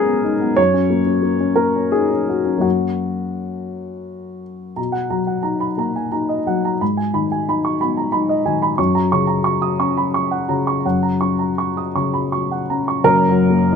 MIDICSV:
0, 0, Header, 1, 2, 480
1, 0, Start_track
1, 0, Key_signature, 6, "major"
1, 0, Tempo, 684932
1, 402, Time_signature, 3, 2, 24, 8
1, 1359, Tempo, 709220
1, 3279, Tempo, 675676
1, 5199, Tempo, 660066
1, 7119, Tempo, 730816
1, 9039, Tempo, 687285
1, 9537, End_track
2, 0, Start_track
2, 0, Title_t, "Upright piano"
2, 0, Program_c, 0, 0
2, 0, Control_c, 0, 64, 127
2, 0, Note_on_c, 0, 44, 52
2, 0, Note_on_c, 0, 56, 44
2, 0, Note_on_c, 0, 59, 45
2, 0, Note_on_c, 0, 61, 40
2, 0, Note_on_c, 0, 68, 84
2, 0, Note_on_c, 0, 70, 80
2, 0, Note_on_c, 0, 71, 81
2, 40, Note_off_c, 0, 59, 0
2, 40, Note_on_c, 0, 59, 44
2, 167, Note_on_c, 0, 63, 45
2, 234, Note_off_c, 0, 59, 0
2, 282, Note_on_c, 0, 59, 45
2, 358, Note_off_c, 0, 63, 0
2, 376, Note_off_c, 0, 44, 0
2, 393, Note_off_c, 0, 68, 0
2, 396, Note_on_c, 0, 73, 87
2, 402, Note_off_c, 0, 59, 0
2, 404, Note_on_c, 0, 42, 55
2, 416, Control_c, 0, 64, 0
2, 419, Note_off_c, 0, 56, 0
2, 421, Note_off_c, 0, 70, 0
2, 423, Note_off_c, 0, 61, 0
2, 423, Note_off_c, 0, 71, 0
2, 514, Control_c, 0, 64, 127
2, 517, Note_on_c, 0, 61, 48
2, 632, Note_on_c, 0, 58, 42
2, 705, Note_off_c, 0, 61, 0
2, 745, Note_on_c, 0, 61, 40
2, 822, Note_off_c, 0, 58, 0
2, 859, Note_on_c, 0, 58, 42
2, 939, Note_off_c, 0, 61, 0
2, 983, Note_on_c, 0, 61, 44
2, 1058, Note_off_c, 0, 58, 0
2, 1090, Note_on_c, 0, 70, 73
2, 1096, Note_on_c, 0, 58, 43
2, 1110, Note_off_c, 0, 73, 0
2, 1183, Note_off_c, 0, 61, 0
2, 1231, Note_on_c, 0, 61, 38
2, 1301, Note_off_c, 0, 58, 0
2, 1344, Note_on_c, 0, 68, 67
2, 1347, Note_off_c, 0, 70, 0
2, 1353, Note_on_c, 0, 63, 33
2, 1428, Note_off_c, 0, 61, 0
2, 1467, Note_on_c, 0, 61, 38
2, 1475, Note_off_c, 0, 63, 0
2, 1597, Note_on_c, 0, 66, 39
2, 1664, Note_off_c, 0, 61, 0
2, 1709, Note_on_c, 0, 61, 32
2, 1781, Note_off_c, 0, 42, 0
2, 1789, Note_off_c, 0, 66, 0
2, 1791, Note_on_c, 0, 42, 41
2, 1793, Note_off_c, 0, 61, 0
2, 1796, Note_on_c, 0, 58, 31
2, 1804, Note_on_c, 0, 61, 31
2, 1813, Note_on_c, 0, 66, 56
2, 1831, Note_off_c, 0, 68, 0
2, 1850, Control_c, 0, 64, 0
2, 1978, Control_c, 0, 64, 127
2, 3032, Note_off_c, 0, 66, 0
2, 3228, Note_off_c, 0, 42, 0
2, 3231, Note_off_c, 0, 58, 0
2, 3235, Note_off_c, 0, 61, 0
2, 3271, Note_on_c, 0, 82, 32
2, 3272, Note_on_c, 0, 47, 35
2, 3294, Control_c, 0, 64, 0
2, 3383, Note_on_c, 0, 78, 36
2, 3390, Control_c, 0, 64, 127
2, 3468, Note_off_c, 0, 82, 0
2, 3511, Note_on_c, 0, 54, 27
2, 3511, Note_on_c, 0, 82, 30
2, 3584, Note_off_c, 0, 78, 0
2, 3629, Note_on_c, 0, 78, 29
2, 3708, Note_off_c, 0, 82, 0
2, 3741, Note_on_c, 0, 82, 36
2, 3745, Note_on_c, 0, 63, 28
2, 3826, Note_off_c, 0, 78, 0
2, 3866, Note_on_c, 0, 83, 30
2, 3899, Note_off_c, 0, 54, 0
2, 3942, Note_off_c, 0, 82, 0
2, 3967, Note_off_c, 0, 63, 0
2, 3990, Note_on_c, 0, 58, 31
2, 3993, Note_off_c, 0, 83, 0
2, 3995, Note_on_c, 0, 82, 32
2, 4119, Note_on_c, 0, 80, 30
2, 4190, Note_off_c, 0, 82, 0
2, 4229, Note_on_c, 0, 63, 31
2, 4232, Note_on_c, 0, 82, 35
2, 4240, Note_off_c, 0, 80, 0
2, 4354, Note_on_c, 0, 75, 36
2, 4381, Note_off_c, 0, 58, 0
2, 4430, Note_off_c, 0, 82, 0
2, 4452, Note_off_c, 0, 63, 0
2, 4478, Note_on_c, 0, 54, 32
2, 4482, Note_on_c, 0, 78, 37
2, 4551, Note_off_c, 0, 75, 0
2, 4609, Note_on_c, 0, 82, 37
2, 4675, Note_off_c, 0, 78, 0
2, 4690, Note_off_c, 0, 47, 0
2, 4720, Note_off_c, 0, 54, 0
2, 4725, Note_on_c, 0, 44, 42
2, 4725, Note_on_c, 0, 83, 36
2, 4726, Note_off_c, 0, 82, 0
2, 4736, Control_c, 0, 64, 0
2, 4840, Note_on_c, 0, 80, 39
2, 4855, Control_c, 0, 64, 127
2, 4915, Note_off_c, 0, 83, 0
2, 4955, Note_on_c, 0, 51, 34
2, 4958, Note_on_c, 0, 83, 37
2, 5032, Note_off_c, 0, 80, 0
2, 5083, Note_on_c, 0, 80, 38
2, 5150, Note_off_c, 0, 83, 0
2, 5202, Note_on_c, 0, 63, 38
2, 5206, Note_on_c, 0, 83, 42
2, 5273, Note_off_c, 0, 80, 0
2, 5321, Note_on_c, 0, 85, 36
2, 5340, Note_off_c, 0, 51, 0
2, 5395, Note_off_c, 0, 83, 0
2, 5418, Note_off_c, 0, 63, 0
2, 5439, Note_on_c, 0, 83, 44
2, 5441, Note_off_c, 0, 85, 0
2, 5442, Note_on_c, 0, 59, 37
2, 5558, Note_on_c, 0, 82, 39
2, 5630, Note_off_c, 0, 83, 0
2, 5666, Note_on_c, 0, 83, 49
2, 5670, Note_on_c, 0, 63, 41
2, 5677, Note_off_c, 0, 82, 0
2, 5791, Note_on_c, 0, 75, 44
2, 5820, Note_off_c, 0, 59, 0
2, 5860, Note_off_c, 0, 83, 0
2, 5885, Note_off_c, 0, 63, 0
2, 5909, Note_on_c, 0, 51, 39
2, 5909, Note_on_c, 0, 80, 46
2, 5980, Note_off_c, 0, 75, 0
2, 6031, Note_on_c, 0, 83, 48
2, 6098, Note_off_c, 0, 80, 0
2, 6119, Note_off_c, 0, 44, 0
2, 6145, Note_off_c, 0, 51, 0
2, 6145, Note_on_c, 0, 85, 49
2, 6147, Note_off_c, 0, 83, 0
2, 6148, Note_on_c, 0, 42, 53
2, 6157, Control_c, 0, 64, 0
2, 6268, Note_on_c, 0, 82, 49
2, 6273, Control_c, 0, 64, 127
2, 6334, Note_off_c, 0, 85, 0
2, 6393, Note_on_c, 0, 85, 50
2, 6397, Note_on_c, 0, 49, 42
2, 6455, Note_off_c, 0, 82, 0
2, 6504, Note_on_c, 0, 82, 44
2, 6579, Note_off_c, 0, 85, 0
2, 6627, Note_on_c, 0, 85, 51
2, 6696, Note_off_c, 0, 82, 0
2, 6755, Note_on_c, 0, 87, 43
2, 6776, Note_off_c, 0, 49, 0
2, 6821, Note_off_c, 0, 85, 0
2, 6873, Note_off_c, 0, 87, 0
2, 6884, Note_on_c, 0, 85, 46
2, 6885, Note_on_c, 0, 61, 38
2, 7014, Note_on_c, 0, 83, 39
2, 7077, Note_off_c, 0, 85, 0
2, 7129, Note_off_c, 0, 83, 0
2, 7135, Note_on_c, 0, 85, 44
2, 7246, Note_on_c, 0, 78, 39
2, 7266, Note_off_c, 0, 61, 0
2, 7313, Note_off_c, 0, 85, 0
2, 7362, Note_on_c, 0, 49, 37
2, 7362, Note_on_c, 0, 82, 43
2, 7428, Note_off_c, 0, 78, 0
2, 7482, Note_on_c, 0, 85, 37
2, 7546, Note_off_c, 0, 82, 0
2, 7564, Note_off_c, 0, 42, 0
2, 7602, Note_on_c, 0, 42, 42
2, 7603, Note_on_c, 0, 78, 37
2, 7604, Control_c, 0, 64, 0
2, 7668, Note_off_c, 0, 85, 0
2, 7715, Note_on_c, 0, 82, 36
2, 7740, Note_off_c, 0, 49, 0
2, 7741, Control_c, 0, 64, 127
2, 7790, Note_off_c, 0, 78, 0
2, 7833, Note_on_c, 0, 85, 35
2, 7839, Note_on_c, 0, 61, 30
2, 7907, Note_off_c, 0, 82, 0
2, 7954, Note_on_c, 0, 82, 32
2, 8027, Note_off_c, 0, 85, 0
2, 8080, Note_on_c, 0, 85, 36
2, 8149, Note_off_c, 0, 82, 0
2, 8205, Note_on_c, 0, 87, 28
2, 8225, Note_off_c, 0, 61, 0
2, 8273, Note_off_c, 0, 85, 0
2, 8323, Note_off_c, 0, 87, 0
2, 8324, Note_on_c, 0, 49, 31
2, 8325, Note_on_c, 0, 85, 34
2, 8444, Note_on_c, 0, 83, 30
2, 8516, Note_off_c, 0, 85, 0
2, 8563, Note_off_c, 0, 83, 0
2, 8567, Note_on_c, 0, 85, 35
2, 8692, Note_on_c, 0, 78, 31
2, 8710, Note_off_c, 0, 49, 0
2, 8758, Note_off_c, 0, 85, 0
2, 8814, Note_on_c, 0, 82, 33
2, 8818, Note_on_c, 0, 61, 30
2, 8881, Note_off_c, 0, 78, 0
2, 8932, Note_on_c, 0, 85, 35
2, 8999, Note_off_c, 0, 82, 0
2, 9021, Note_off_c, 0, 42, 0
2, 9038, Note_on_c, 0, 30, 55
2, 9040, Note_on_c, 0, 70, 93
2, 9045, Note_off_c, 0, 85, 0
2, 9048, Note_off_c, 0, 61, 0
2, 9051, Note_on_c, 0, 42, 65
2, 9053, Control_c, 0, 64, 0
2, 9162, Control_c, 0, 64, 127
2, 9213, Note_on_c, 0, 54, 54
2, 9359, Note_on_c, 0, 58, 48
2, 9463, Note_off_c, 0, 54, 0
2, 9515, Note_on_c, 0, 63, 56
2, 9537, Note_off_c, 0, 30, 0
2, 9537, Note_off_c, 0, 42, 0
2, 9537, Note_off_c, 0, 58, 0
2, 9537, Note_off_c, 0, 63, 0
2, 9537, Note_off_c, 0, 70, 0
2, 9537, End_track
0, 0, End_of_file